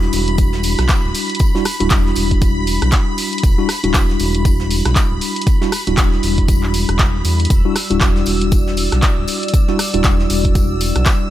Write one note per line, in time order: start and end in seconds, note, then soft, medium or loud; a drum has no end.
0.00 1.51 G3 medium
0.00 1.51 D4 medium
0.00 1.51 E4 medium
0.00 1.51 F#4 loud
0.00 7.51 B5 medium
0.00 snare soft
0.13 0.75 E1 medium
0.13 open hi-hat medium
0.13 tambourine medium
0.28 closed hi-hat soft
0.38 kick loud
0.38 closed hi-hat medium
0.38 tambourine medium
0.53 snare soft
0.63 open hi-hat loud
0.63 tambourine medium
0.78 0.87 B1 medium
0.78 cross-stick medium
0.78 snare soft
0.78 closed hi-hat soft
0.89 kick loud
0.89 snare loud
0.89 clap loud
0.89 closed hi-hat medium
0.89 tambourine medium
1.04 1.13 D1 medium
1.15 open hi-hat medium
1.15 tambourine medium
1.30 closed hi-hat soft
1.35 closed hi-hat medium
1.39 kick loud
1.39 closed hi-hat medium
1.39 tambourine medium
1.55 1.63 G3 medium
1.55 1.63 D4 medium
1.55 1.63 E4 medium
1.55 1.63 F#4 loud
1.55 snare soft
1.65 cross-stick medium
1.65 open hi-hat loud
1.65 tambourine medium
1.80 1.89 D1 medium
1.80 3.55 G3 medium
1.80 3.55 D4 medium
1.80 3.55 E4 medium
1.80 3.55 F#4 medium
1.80 closed hi-hat medium
1.90 2.13 E1 medium
1.90 kick loud
1.90 snare loud
1.90 clap loud
1.90 closed hi-hat medium
1.90 tambourine medium
2.06 snare soft
2.16 2.78 E1 medium
2.16 open hi-hat medium
2.16 tambourine medium
2.31 kick medium
2.31 closed hi-hat medium
2.42 kick loud
2.42 closed hi-hat medium
2.42 tambourine medium
2.67 open hi-hat medium
2.67 tambourine medium
2.82 2.91 B1 loud
2.82 cross-stick medium
2.82 closed hi-hat medium
2.92 kick loud
2.92 snare loud
2.92 clap loud
2.92 closed hi-hat medium
2.92 tambourine medium
3.18 open hi-hat medium
3.18 tambourine medium
3.33 closed hi-hat soft
3.38 closed hi-hat medium
3.43 3.56 E1 loud
3.43 kick loud
3.43 closed hi-hat medium
3.43 tambourine medium
3.58 3.67 G3 medium
3.58 3.67 D4 medium
3.58 3.67 E4 medium
3.58 3.67 F#4 loud
3.69 cross-stick medium
3.69 snare soft
3.69 open hi-hat loud
3.69 tambourine medium
3.84 3.93 D1 loud
3.84 5.58 G3 medium
3.84 5.58 D4 medium
3.84 5.58 E4 medium
3.84 5.58 F#4 loud
3.84 closed hi-hat medium
3.94 4.16 E1 medium
3.94 kick loud
3.94 snare loud
3.94 clap loud
3.94 closed hi-hat medium
3.94 tambourine medium
4.09 snare soft
4.19 4.82 E1 medium
4.19 open hi-hat medium
4.19 tambourine medium
4.35 closed hi-hat medium
4.45 kick loud
4.45 closed hi-hat medium
4.45 tambourine medium
4.60 snare soft
4.70 open hi-hat loud
4.70 tambourine medium
4.85 4.94 B1 medium
4.85 cross-stick medium
4.85 snare soft
4.85 closed hi-hat medium
4.96 kick loud
4.96 snare loud
4.96 clap loud
4.96 closed hi-hat medium
4.96 tambourine medium
5.11 5.20 D1 medium
5.21 open hi-hat medium
5.21 tambourine medium
5.36 closed hi-hat soft
5.42 closed hi-hat medium
5.47 kick loud
5.47 closed hi-hat medium
5.47 tambourine medium
5.62 5.70 G3 medium
5.62 5.70 D4 medium
5.62 5.70 E4 medium
5.62 5.70 F#4 loud
5.62 snare soft
5.72 cross-stick medium
5.72 open hi-hat loud
5.72 tambourine medium
5.87 5.96 D1 loud
5.87 7.61 G3 medium
5.87 7.61 D4 medium
5.87 7.62 E4 medium
5.87 7.62 F#4 medium
5.87 closed hi-hat medium
5.97 6.20 E1 medium
5.97 kick loud
5.97 snare loud
5.97 clap loud
5.97 closed hi-hat medium
5.97 tambourine medium
6.12 snare soft
6.23 6.85 E1 medium
6.23 open hi-hat medium
6.23 tambourine medium
6.38 kick medium
6.38 closed hi-hat medium
6.48 kick loud
6.48 closed hi-hat medium
6.48 tambourine loud
6.63 clap soft
6.74 open hi-hat medium
6.74 tambourine medium
6.89 7.22 E1 loud
6.89 cross-stick medium
6.89 closed hi-hat medium
6.99 kick loud
6.99 snare loud
6.99 clap loud
6.99 closed hi-hat medium
6.99 tambourine medium
7.25 7.47 E2 medium
7.25 open hi-hat medium
7.25 tambourine medium
7.40 closed hi-hat medium
7.45 closed hi-hat medium
7.50 7.63 E1 loud
7.50 11.30 G3 medium
7.50 11.30 F#4 medium
7.50 11.30 D5 medium
7.50 11.30 E6 medium
7.50 kick loud
7.50 closed hi-hat medium
7.50 tambourine medium
7.65 7.74 G3 medium
7.65 7.74 D4 medium
7.65 7.74 E4 medium
7.65 7.74 F#4 loud
7.75 cross-stick medium
7.75 snare soft
7.75 open hi-hat loud
7.75 tambourine medium
7.90 7.99 D1 loud
7.90 9.65 G3 medium
7.90 9.65 D4 medium
7.90 9.65 E4 medium
7.90 9.65 F#4 medium
7.90 closed hi-hat medium
8.01 8.23 E1 medium
8.01 kick loud
8.01 snare loud
8.01 clap loud
8.01 closed hi-hat medium
8.01 tambourine medium
8.16 snare soft
8.26 8.88 E1 medium
8.26 open hi-hat medium
8.26 tambourine medium
8.41 closed hi-hat medium
8.52 kick loud
8.52 closed hi-hat medium
8.52 tambourine medium
8.67 snare soft
8.77 open hi-hat loud
8.77 tambourine medium
8.92 9.01 B1 medium
8.92 cross-stick medium
8.92 snare soft
8.92 closed hi-hat medium
9.02 kick loud
9.02 snare loud
9.02 clap loud
9.02 closed hi-hat medium
9.02 tambourine medium
9.18 9.26 D1 loud
9.28 open hi-hat medium
9.28 tambourine medium
9.43 closed hi-hat soft
9.48 closed hi-hat medium
9.54 kick loud
9.54 closed hi-hat medium
9.54 tambourine medium
9.68 9.77 G3 medium
9.68 9.77 D4 medium
9.68 9.77 E4 medium
9.68 9.77 F#4 loud
9.68 snare soft
9.79 cross-stick medium
9.79 open hi-hat loud
9.79 tambourine medium
9.94 10.03 D1 loud
9.94 11.30 G3 medium
9.94 11.30 D4 medium
9.94 11.30 E4 medium
9.94 11.30 F#4 medium
9.94 closed hi-hat medium
10.04 10.26 E1 medium
10.04 kick loud
10.04 snare loud
10.04 clap loud
10.04 closed hi-hat medium
10.04 tambourine medium
10.19 snare soft
10.30 10.92 E1 medium
10.30 open hi-hat medium
10.30 tambourine medium
10.45 kick medium
10.45 closed hi-hat medium
10.55 kick loud
10.55 closed hi-hat medium
10.55 tambourine medium
10.81 open hi-hat loud
10.81 tambourine medium
10.96 11.04 B1 loud
10.96 cross-stick medium
10.96 closed hi-hat medium
11.06 kick loud
11.06 snare loud
11.06 clap loud
11.06 closed hi-hat medium
11.06 tambourine medium